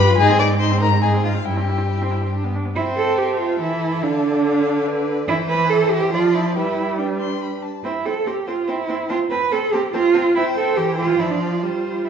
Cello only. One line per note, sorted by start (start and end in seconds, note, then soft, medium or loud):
0.00 0.16 G2 loud
0.19 1.44 G#2 medium
1.46 2.54 G2 medium
2.76 2.84 E4 medium
2.96 3.19 A4 medium
3.18 3.40 G4 medium
3.39 3.59 F4 medium
3.60 4.04 E4 medium
4.02 5.07 D4 medium
5.28 5.36 E4 loud
5.49 5.71 B4 loud
5.70 5.92 A4 medium
5.91 6.12 G4 loud
6.13 6.36 F4 medium
6.34 6.56 E4 medium
6.56 7.01 E4 medium
6.99 7.63 D4 medium
7.84 8.07 E4 medium
8.06 8.28 A4 medium
8.27 8.49 G4 medium
8.47 8.70 F4 medium
8.69 9.09 E4 medium
9.10 9.18 F4 medium
9.31 9.53 B4 medium
9.52 9.75 A4 medium
9.73 9.93 G4 medium
9.94 10.35 F4 loud
10.35 10.43 E4 loud
10.56 10.78 A4 medium
10.77 10.97 G4 medium
10.98 11.21 F4 medium
11.19 11.31 E4 medium
11.30 11.42 D4 medium
11.40 11.61 F4 medium
11.62 12.07 F4 medium
12.05 12.10 E4 medium